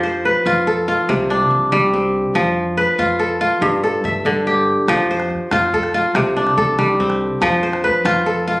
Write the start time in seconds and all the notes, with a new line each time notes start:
Already playing: F2 F3 G4
0.03 C5
0.25 B4
0.46 F2 F4
0.67 A4
0.88 F4
1.09 C2 C3
1.30 D4
1.50 C2
1.72 C2 G3
1.94 C4
2.35 F2 F3
2.77 B4
2.98 F2 F4
3.19 A4
3.41 F4
3.61 G2
3.83 A4
4.04 G2 E5
4.25 G2 D3
4.47 G4
4.88 F2 F3, calabash thump, calabash click
4.98 calabash click
5.11 C5
5.20 calabash click
5.30 calabash thump, calabash click
5.51 F2 F4, calabash click
5.73 A4, calabash thump
5.83 calabash click
5.94 F4
6.15 C2 C3, calabash thump, calabash click
6.26 calabash click
6.37 D4, calabash click
6.47 calabash click
6.57 C2 A4, calabash thump
6.79 C2 G3, calabash click
7.00 C4, calabash thump
7.10 calabash click
7.41 F2 F3, calabash thump, calabash click
7.52 calabash click
7.63 C5
7.73 calabash click
7.84 B4, calabash thump, calabash click
8.05 F2 F4, calabash click
8.26 A4
8.48 F4